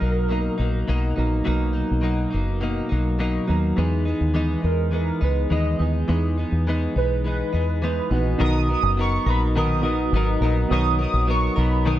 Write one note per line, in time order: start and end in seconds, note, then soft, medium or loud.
0.00 0.48 B1 medium
0.00 1.17 F#3 medium
0.00 0.29 F#3 soft
0.00 0.30 A#3 soft
0.00 1.18 B3 medium
0.00 1.18 D#4 medium
0.00 0.30 D#4 medium
0.00 1.13 A#4 loud
0.00 1.19 A#4 medium
0.29 0.59 B2 medium
0.29 0.59 F#3 medium
0.29 0.58 A#3 medium
0.29 0.56 D#4 medium
0.58 0.82 A#1 medium
0.58 0.87 F#3 soft
0.58 0.88 A#3 medium
0.58 0.88 D#4 medium
0.88 1.12 B1 medium
0.88 1.17 B2 medium
0.88 1.17 F#3 medium
0.88 1.16 A#3 medium
0.88 1.15 D#4 medium
1.16 1.41 A#1 medium
1.16 1.35 F#3 medium
1.16 1.44 F#3 soft
1.16 1.45 A#3 soft
1.16 1.35 B3 medium
1.16 1.45 D#4 medium
1.16 1.35 D#4 medium
1.16 1.36 A#4 medium
1.45 1.82 B1 medium
1.45 1.74 B2 medium
1.45 1.75 F#3 medium
1.45 2.16 F#3 medium
1.45 1.73 A#3 medium
1.45 2.17 B3 medium
1.45 1.72 D#4 loud
1.45 2.17 D#4 medium
1.49 2.17 A#4 medium
1.73 2.02 F#3 soft
1.73 2.02 A#3 medium
1.73 2.03 D#4 medium
1.91 2.25 B1 medium
2.01 2.31 B2 medium
2.01 2.32 F#3 medium
2.01 2.31 A#3 medium
2.01 2.29 D#4 medium
2.30 2.80 F#1 medium
2.30 2.60 F#3 soft
2.30 2.61 A#3 medium
2.30 2.61 D#4 medium
2.61 2.90 B2 medium
2.61 2.90 F#3 medium
2.61 2.90 A#3 medium
2.61 2.88 D#4 medium
2.89 3.37 B1 medium
2.89 3.19 F#3 medium
2.89 3.19 A#3 medium
2.89 3.19 D#4 medium
3.19 3.48 B2 medium
3.19 3.49 F#3 medium
3.19 3.48 A#3 medium
3.19 3.46 D#4 medium
3.47 3.72 D#2 medium
3.47 3.65 F#3 medium
3.47 3.78 F#3 soft
3.47 3.77 A#3 medium
3.47 3.66 B3 medium
3.47 3.77 D#4 medium
3.47 3.66 D#4 medium
3.47 3.67 A#4 medium
3.76 4.12 E2 medium
3.76 4.46 E3 medium
3.76 4.06 E3 medium
3.76 4.06 G#3 medium
3.76 4.47 B3 medium
3.76 4.06 B3 medium
3.76 4.47 D#4 medium
3.76 4.04 D#4 medium
3.76 4.48 G#4 medium
4.05 4.33 G#3 soft
4.05 4.34 B3 medium
4.05 4.35 D#4 medium
4.21 4.55 D#2 medium
4.34 4.63 E3 medium
4.34 4.64 G#3 medium
4.34 4.62 B3 medium
4.34 4.61 D#4 loud
4.62 5.10 E2 medium
4.62 4.91 G#3 soft
4.62 4.92 B3 soft
4.62 4.92 D#4 soft
4.62 4.91 A#4 medium
4.91 5.21 E3 medium
4.91 5.21 G#3 medium
4.91 5.22 B3 medium
4.91 5.20 D#4 medium
4.91 5.25 A#4 medium
5.21 5.45 C#2 medium
5.21 5.50 G#3 soft
5.21 5.51 B3 medium
5.21 5.50 D#4 medium
5.21 5.51 B4 medium
5.50 5.74 D#2 medium
5.50 5.79 E3 medium
5.50 5.80 G#3 medium
5.50 5.80 B3 medium
5.50 5.78 D#4 medium
5.50 5.92 D#5 medium
5.79 6.03 D#2 medium
5.79 5.97 E3 medium
5.79 6.08 G#3 soft
5.79 5.97 B3 medium
5.79 6.08 B3 soft
5.79 6.08 D#4 medium
5.79 5.98 D#4 medium
5.79 5.98 G#4 medium
6.08 6.43 E2 loud
6.08 6.78 E3 medium
6.08 6.37 E3 medium
6.08 6.37 G#3 medium
6.08 6.78 B3 medium
6.08 6.37 B3 medium
6.08 6.79 D#4 medium
6.08 6.36 D#4 medium
6.08 6.79 G#4 medium
6.38 6.67 G#3 soft
6.38 6.67 B3 medium
6.38 6.66 D#4 medium
6.52 6.86 E2 medium
6.67 6.95 E3 medium
6.67 6.96 G#3 medium
6.67 6.96 B3 medium
6.67 6.94 D#4 loud
6.96 7.42 B1 medium
6.96 7.24 G#3 soft
6.96 7.25 B3 soft
6.96 7.24 D#4 medium
6.96 7.23 B4 loud
7.24 7.53 E3 medium
7.24 7.53 G#3 medium
7.24 7.53 B3 medium
7.24 7.51 D#4 medium
7.24 7.79 B4 loud
7.53 7.99 E2 medium
7.53 7.82 G#3 soft
7.53 7.82 B3 soft
7.53 7.81 D#4 medium
7.82 8.10 E3 medium
7.82 8.11 G#3 medium
7.82 8.11 B3 medium
7.82 8.10 D#4 medium
7.86 8.24 B4 medium
8.10 8.34 A#1 medium
8.10 8.27 E3 medium
8.10 8.28 B3 medium
8.10 8.39 B3 soft
8.10 8.39 D#4 soft
8.10 8.28 D#4 medium
8.10 8.29 F#4 medium
8.14 8.40 G#3 soft
8.38 8.74 B1 loud
8.38 8.68 B2 medium
8.38 8.68 D#3 loud
8.38 8.68 F#3 medium
8.38 9.08 B3 medium
8.38 8.68 B3 medium
8.38 9.09 D#4 medium
8.38 8.69 D#4 medium
8.38 9.09 F#4 medium
8.38 9.09 A#4 medium
8.38 8.67 A#4 loud
8.38 9.10 D#5 medium
8.43 8.68 D#6 loud
8.69 8.96 F#3 medium
8.69 8.97 B3 medium
8.69 8.98 D#4 medium
8.69 8.97 A#4 medium
8.73 8.97 D#6 loud
8.83 9.17 F#1 loud
8.97 9.26 F#3 medium
8.97 9.27 B3 medium
8.97 9.27 D#4 medium
8.97 9.25 A#4 medium
8.97 9.26 C#6 loud
9.26 10.08 A#1 medium
9.26 9.55 F#3 soft
9.26 9.55 B3 medium
9.26 9.56 D#4 medium
9.26 9.55 A#4 medium
9.26 9.42 B5 medium
9.55 9.84 B2 medium
9.55 9.84 D#3 medium
9.55 9.84 F#3 medium
9.55 9.84 B3 medium
9.55 9.83 D#4 medium
9.55 9.82 A#4 loud
9.55 10.39 D#6 loud
9.82 10.35 B3 medium
9.82 10.13 B3 medium
9.82 10.35 D#4 medium
9.82 10.13 D#4 medium
9.82 10.35 F#4 medium
9.82 10.12 A#4 medium
9.82 10.36 A#4 medium
9.82 10.36 D#5 medium
9.87 10.12 F#3 soft
10.12 10.35 G#1 loud
10.12 10.42 F#3 medium
10.12 10.42 B3 medium
10.12 10.42 D#4 medium
10.17 10.41 A#4 medium
10.41 10.64 A#1 medium
10.41 10.71 B3 medium
10.41 10.71 D#4 medium
10.41 10.70 A#4 medium
10.45 10.71 F#3 medium
10.69 11.05 B1 loud
10.69 10.99 B2 medium
10.69 11.00 D#3 medium
10.69 11.00 F#3 medium
10.69 11.39 B3 medium
10.69 11.39 D#4 medium
10.69 10.99 D#4 medium
10.69 11.40 F#4 medium
10.69 11.40 A#4 medium
10.69 10.77 C#5 medium
10.69 10.97 D#6 loud
10.73 11.00 B3 loud
10.73 10.97 A#4 medium
10.78 11.44 D#5 medium
10.99 11.26 F#3 soft
10.99 11.27 B3 soft
10.99 11.28 D#4 medium
10.99 11.27 A#4 medium
10.99 11.27 D#6 loud
11.14 11.48 A#1 medium
11.27 11.56 F#3 medium
11.27 11.57 B3 medium
11.27 11.56 D#4 medium
11.27 11.55 A#4 medium
11.27 11.61 C#6 loud
11.56 11.99 B1 loud
11.56 11.85 F#3 medium
11.56 11.85 B3 medium
11.56 11.85 D#4 medium
11.56 11.85 A#4 medium
11.56 11.87 B5 medium
11.85 11.99 B2 medium
11.85 11.99 D#3 medium
11.85 11.99 F#3 medium
11.85 11.99 B3 medium
11.85 11.99 D#4 medium
11.85 11.99 A#4 medium
11.85 11.99 D#6 loud